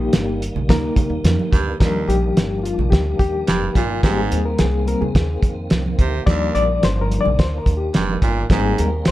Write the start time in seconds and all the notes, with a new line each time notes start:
Already playing: D#3 G3 A#3 D#4 G4
0.13 G1, snare, closed hi-hat, high conga
0.42 closed hi-hat
0.55 A#1, low conga
0.69 D2 A#3 D#4 A#4, kick, snare, closed hi-hat, muted conga, low conga
0.96 muted upright bass stroke, kick, closed hi-hat, muted conga, low conga
1.10 D#2
1.24 F2, snare, closed hi-hat, high conga
1.39 high conga
1.52 D2 G2, kick, snare, closed hi-hat
1.80 D#2 D#3 F3 G3 A#3 D4 A#4, kick, snare, closed hi-hat, muted conga
2.08 A#1 G4, closed hi-hat, muted conga
2.37 G1, snare, closed hi-hat, high conga
2.63 F4, closed hi-hat
2.78 A#1, low conga
2.90 D2 G4, kick, snare, closed hi-hat
3.19 D#2 G4, kick, closed hi-hat, muted conga
3.47 F1 G2, snare, closed hi-hat, high conga
3.62 high conga
3.75 G1 A#2 F4, kick, snare, closed hi-hat
4.02 G#1 G#2 D#3 G3 A#3 C4 G4, kick, snare, closed hi-hat, muted conga
4.18 G#4
4.32 D#2, closed hi-hat, muted conga
4.45 A#4
4.59 C2 G#4, snare, closed hi-hat, high conga
4.85 G3 A#3 C4 A#4, closed hi-hat
5.01 D2 G#4, low conga
5.15 D#2, kick, snare, closed hi-hat, low conga
5.43 F2, kick, closed hi-hat, muted conga
5.70 C2, snare, closed hi-hat, high conga
5.86 high conga
5.99 D2 C3, kick, closed hi-hat
6.26 D#2 D#3 F3 G3 D4 D5, kick, snare, closed hi-hat, muted conga
6.55 A#1 D5, closed hi-hat, muted conga
6.83 G1 C5, snare, closed hi-hat, high conga
7.01 A#4
7.10 F3 G3 D4, closed hi-hat
7.21 D5
7.25 A#1, low conga
7.39 D2 C5, kick, snare, closed hi-hat
7.58 A#4
7.66 D#2, kick, closed hi-hat, muted conga
7.77 G4
7.94 F1 G2, snare, closed hi-hat, high conga
8.09 high conga
8.22 G1 A#2, kick, snare, closed hi-hat
8.50 G#1 G#2 G3 A#3 C4 G#4, kick, snare, closed hi-hat, muted conga
8.78 D#2 A#4, closed hi-hat, muted conga
9.05 C2 C5, snare, closed hi-hat, high conga